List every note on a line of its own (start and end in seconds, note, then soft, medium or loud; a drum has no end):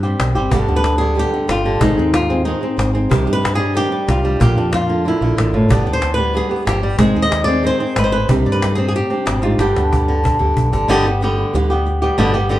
0.00 0.14 G2 medium
0.00 0.35 C4 soft
0.00 0.34 G4 soft
0.05 0.36 G3 soft
0.18 0.34 B1 medium
0.18 0.35 D#3 soft
0.18 0.35 G3 soft
0.18 0.35 C4 soft
0.18 0.33 G4 soft
0.18 cajon slap medium
0.35 0.50 G1 medium
0.35 0.52 G3 soft
0.35 0.51 G3 soft
0.35 0.51 C4 soft
0.35 0.52 C4 medium
0.35 0.51 G4 soft
0.35 0.51 G4 medium
0.51 0.66 G1 medium
0.51 1.80 G2 medium
0.51 0.67 B2 medium
0.51 0.67 D3 medium
0.51 1.00 D3 soft
0.51 0.67 G3 medium
0.51 0.66 B3 medium
0.51 1.80 B3 soft
0.51 0.67 D4 soft
0.51 0.66 G4 medium
0.51 cajon bass medium
0.67 1.22 D2 medium
0.67 0.83 G3 soft
0.67 0.83 B3 soft
0.67 1.49 D4 soft
0.67 0.83 G4 soft
0.76 0.97 B4 medium
0.83 muted nylon-string guitar stroke soft
0.83 cajon slap medium
0.98 1.32 D3 medium
0.98 1.14 G3 soft
0.98 1.15 B3 soft
0.98 1.15 G4 soft
0.98 1.18 G#4 medium
1.14 1.31 B2 medium
1.14 1.31 D3 medium
1.14 1.32 G3 medium
1.14 1.31 B3 medium
1.14 1.30 G4 medium
1.19 1.83 G4 medium
1.31 1.64 D3 soft
1.31 1.47 G3 soft
1.31 1.47 B3 soft
1.31 1.47 G4 soft
1.47 1.76 G1 medium
1.47 1.81 F4 medium
1.47 muted nylon-string guitar stroke soft
1.47 cajon slap medium
1.64 1.82 D3 medium
1.64 1.80 G3 soft
1.64 1.81 B3 soft
1.64 1.80 G4 soft
1.79 1.95 G#1 medium
1.79 3.10 G#2 medium
1.79 1.96 D#3 medium
1.79 1.96 G#3 medium
1.79 1.97 C4 medium
1.79 1.96 D#4 medium
1.79 2.14 D#4 medium
1.79 1.96 G#4 medium
1.79 cajon bass loud
1.97 2.52 D#2 medium
1.97 2.12 C4 soft
1.97 2.29 C4 soft
1.97 2.13 D#4 soft
1.97 2.13 G#4 soft
1.97 cajon slap soft
2.13 2.45 F4 medium
2.13 muted nylon-string guitar stroke soft
2.13 cajon slap medium
2.30 2.62 C4 medium
2.30 2.45 C4 soft
2.30 2.45 D#4 soft
2.30 2.45 G#4 soft
2.45 2.61 D#3 medium
2.45 2.61 G#3 medium
2.45 2.62 C4 medium
2.45 3.11 D#4 medium
2.45 2.61 D#4 medium
2.45 2.59 G#4 medium
2.61 2.78 C4 medium
2.61 2.76 C4 soft
2.61 2.77 D#4 soft
2.61 2.76 G#4 soft
2.77 3.05 G#1 medium
2.77 2.94 C4 soft
2.77 muted nylon-string guitar stroke soft
2.77 cajon slap medium
2.93 3.09 C4 medium
2.93 3.10 C4 soft
2.93 3.10 D#4 soft
2.93 3.10 G#4 soft
3.09 3.24 C2 medium
3.09 3.26 C3 medium
3.09 4.39 C3 medium
3.09 3.26 D#3 medium
3.09 3.26 G3 medium
3.09 3.26 D4 medium
3.09 3.24 G4 medium
3.09 cajon bass loud
3.26 3.82 G2 medium
3.26 3.42 G3 soft
3.26 3.42 D4 soft
3.26 4.08 D#4 soft
3.26 3.42 G4 soft
3.33 3.54 B4 medium
3.42 muted nylon-string guitar stroke soft
3.42 cajon slap medium
3.55 3.91 G3 medium
3.55 3.74 D4 soft
3.55 3.75 G4 soft
3.55 3.76 G#4 medium
3.60 3.74 G3 soft
3.74 3.91 C3 medium
3.74 3.91 D#3 medium
3.74 3.91 G3 medium
3.74 3.90 D4 medium
3.74 3.89 G4 medium
3.74 4.41 G4 loud
3.90 4.23 G3 medium
3.90 4.06 G3 soft
3.90 4.06 D4 soft
3.90 4.07 G4 soft
3.90 cajon slap soft
4.07 4.35 C2 medium
4.07 4.41 F4 medium
4.07 muted nylon-string guitar stroke soft
4.07 cajon slap medium
4.23 4.39 G3 medium
4.23 4.40 G3 soft
4.23 4.40 D4 soft
4.23 4.39 G4 soft
4.39 4.54 A#1 medium
4.39 4.89 A#2 medium
4.39 4.56 D3 medium
4.39 4.56 A#3 medium
4.39 4.55 D4 medium
4.39 4.54 F4 medium
4.39 4.74 G4 medium
4.39 cajon bass medium
4.55 5.11 F2 medium
4.55 4.71 A#3 soft
4.55 4.71 D4 soft
4.55 5.69 D4 soft
4.55 4.71 F4 soft
4.71 5.06 F4 medium
4.71 muted nylon-string guitar stroke medium
4.71 cajon slap medium
4.88 5.21 D3 medium
4.88 5.04 A#3 soft
4.88 5.04 D4 soft
4.88 5.04 F4 soft
5.04 5.20 D3 medium
5.04 5.21 A#3 medium
5.04 5.20 D4 medium
5.04 5.72 E4 medium
5.04 5.19 F4 medium
5.04 cajon slap soft
5.20 5.36 A#1 medium
5.20 5.70 D3 medium
5.20 5.36 A#3 soft
5.20 5.36 D4 soft
5.20 5.37 F4 soft
5.37 5.52 A1 medium
5.37 5.54 A#2 medium
5.37 muted nylon-string guitar stroke soft
5.37 cajon slap medium
5.53 5.68 G1 medium
5.53 5.70 A2 medium
5.53 5.70 A#3 soft
5.53 5.70 D4 soft
5.53 5.69 F4 soft
5.69 5.83 G1 medium
5.69 5.85 B2 medium
5.69 5.86 D3 medium
5.69 5.85 G3 medium
5.69 5.85 B3 medium
5.69 6.16 B3 soft
5.69 5.85 D4 soft
5.69 5.84 G4 medium
5.69 5.93 D5 soft
5.69 cajon bass medium
5.85 6.40 D2 medium
5.85 6.00 G3 soft
5.85 6.00 B3 soft
5.85 6.02 D4 soft
5.85 6.00 G4 soft
5.85 cajon slap soft
5.93 6.14 C5 medium
6.01 6.98 D4 soft
6.01 muted nylon-string guitar stroke medium
6.01 cajon slap medium
6.14 6.50 B3 medium
6.14 6.34 G4 soft
6.14 6.68 B4 medium
6.18 6.33 G3 soft
6.18 6.33 B3 soft
6.33 6.49 B2 medium
6.33 6.50 D3 medium
6.33 6.50 G3 medium
6.33 6.49 B3 medium
6.33 6.48 G4 medium
6.33 cajon slap soft
6.37 6.68 G#4 medium
6.49 6.65 G3 soft
6.49 6.64 B3 soft
6.49 6.66 B3 medium
6.49 6.65 G4 soft
6.49 cajon slap soft
6.65 6.94 G1 medium
6.65 6.83 F3 medium
6.65 7.01 G4 medium
6.65 muted nylon-string guitar stroke soft
6.65 cajon slap medium
6.81 6.99 G3 medium
6.81 6.98 G3 soft
6.81 6.99 B3 soft
6.81 6.98 G4 soft
6.97 7.13 G#1 medium
6.97 7.14 D#3 medium
6.97 7.15 G#3 medium
6.97 7.96 G#3 medium
6.97 7.15 C4 medium
6.97 7.47 C4 medium
6.97 7.14 D#4 medium
6.97 7.32 D#4 soft
6.97 7.13 G#4 medium
6.97 cajon bass loud
7.01 7.15 G#4 soft
7.14 7.70 D#2 medium
7.14 7.29 C4 soft
7.14 7.30 D#4 soft
7.14 7.30 G#4 soft
7.14 7.97 G#4 soft
7.22 7.44 D#5 loud
7.30 8.28 D#4 soft
7.30 muted nylon-string guitar stroke soft
7.30 cajon slap medium
7.44 7.79 C4 medium
7.44 7.62 C4 soft
7.44 7.63 D#4 soft
7.44 7.63 G#4 soft
7.44 7.65 D5 medium
7.62 7.79 D#3 medium
7.62 7.80 G#3 medium
7.62 7.79 C4 medium
7.62 7.78 D#4 medium
7.62 7.77 G#4 medium
7.66 8.03 C5 loud
7.78 7.96 C4 medium
7.78 7.95 C4 soft
7.78 7.96 D#4 soft
7.78 7.95 G#4 soft
7.78 cajon slap soft
7.96 8.24 G#1 medium
7.96 8.13 G#3 medium
7.96 8.11 B4 medium
7.96 muted nylon-string guitar stroke soft
7.96 cajon slap medium
8.04 8.30 C5 medium
8.12 8.29 C4 soft
8.12 8.29 D#4 soft
8.12 8.28 G#4 soft
8.12 8.30 B4 medium
8.28 8.43 C2 medium
8.28 8.61 C3 medium
8.28 9.41 C3 medium
8.28 8.60 D#3 medium
8.28 8.61 G3 medium
8.28 8.62 D4 medium
8.28 8.62 G4 medium
8.28 cajon bass medium
8.46 9.01 G2 medium
8.46 9.60 D5 soft
8.46 cajon slap soft
8.52 8.73 B4 medium
8.61 8.94 D#3 soft
8.61 8.94 G3 soft
8.61 8.94 D4 soft
8.61 8.95 G4 soft
8.61 cajon slap medium
8.75 9.09 C4 medium
8.75 8.87 G#4 medium
8.88 8.95 G#4 medium
8.94 9.59 G4 medium
8.94 muted nylon-string guitar stroke medium
9.10 9.44 G3 soft
9.10 9.57 C4 soft
9.10 9.43 D4 soft
9.10 9.42 G4 soft
9.26 9.54 G#1 medium
9.26 9.43 B2 medium
9.26 cajon slap medium
9.42 9.59 G#2 medium
9.42 9.58 G3 soft
9.42 9.60 D4 soft
9.42 9.59 F4 medium
9.42 9.59 G4 soft
9.58 9.72 G1 medium
9.58 10.87 G2 medium
9.58 9.91 B2 medium
9.58 9.90 D3 medium
9.58 9.91 G3 medium
9.58 9.92 B3 medium
9.58 10.89 G4 medium
9.58 9.92 G4 medium
9.58 cajon slap medium
9.76 10.30 D2 medium
9.76 10.22 D4 soft
9.76 cajon slap medium
9.91 10.23 D3 soft
9.91 10.23 G3 soft
9.91 10.88 B3 soft
9.91 10.24 B3 soft
9.91 10.23 G4 soft
9.91 cajon bass medium
10.08 10.38 D3 medium
10.24 10.87 D4 soft
10.24 muted nylon-string guitar stroke medium
10.24 cajon bass medium
10.39 10.55 D2 medium
10.39 10.71 D3 medium
10.39 10.73 G3 soft
10.39 10.72 B3 soft
10.39 10.71 G4 soft
10.57 10.72 B1 medium
10.57 cajon bass medium
10.72 10.87 G1 medium
10.72 10.88 D3 medium
10.72 10.88 G3 soft
10.72 10.88 B3 soft
10.72 10.88 G4 soft
10.72 cajon bass medium
10.88 11.43 G1 medium
10.88 11.04 B2 medium
10.88 11.05 D3 medium
10.88 11.04 G3 medium
10.88 11.05 G3 medium
10.88 11.04 B3 medium
10.88 11.05 B3 medium
10.88 11.03 G4 medium
10.88 11.04 G4 medium
11.04 11.20 G3 soft
11.04 11.22 G3 soft
11.04 11.21 B3 soft
11.04 11.22 B3 medium
11.04 11.20 G4 soft
11.04 11.21 G4 medium
11.21 11.54 D3 medium
11.21 11.54 G3 medium
11.21 11.55 B3 medium
11.21 11.55 G4 medium
11.21 muted nylon-string guitar stroke soft
11.37 11.53 G3 soft
11.37 11.54 B3 soft
11.37 11.53 G4 soft
11.53 12.08 D2 medium
11.53 11.69 B2 medium
11.53 11.70 D3 medium
11.53 11.70 G3 medium
11.53 11.69 B3 medium
11.53 11.68 G4 medium
11.53 muted nylon-string guitar stroke medium
11.69 11.85 G3 soft
11.69 12.02 G3 soft
11.69 11.85 B3 soft
11.69 12.01 B3 soft
11.69 11.85 G4 soft
11.69 12.01 G4 soft
11.86 muted nylon-string guitar stroke soft
12.01 12.18 G3 soft
12.01 12.17 G3 medium
12.01 12.17 B3 medium
12.01 12.18 B3 soft
12.01 12.18 G4 soft
12.01 12.18 G4 medium
12.18 12.60 G1 medium
12.18 12.34 B2 medium
12.18 12.34 D3 medium
12.18 12.34 G3 medium
12.18 12.33 B3 loud
12.18 12.34 B3 medium
12.18 12.34 G4 medium
12.18 12.33 G4 medium
12.34 12.49 G3 soft
12.34 12.50 B3 soft
12.34 12.50 G4 medium
12.34 12.50 G4 soft
12.49 12.60 D3 medium
12.49 12.60 G3 medium
12.49 12.60 B3 medium
12.49 12.60 G4 medium
12.49 muted nylon-string guitar stroke medium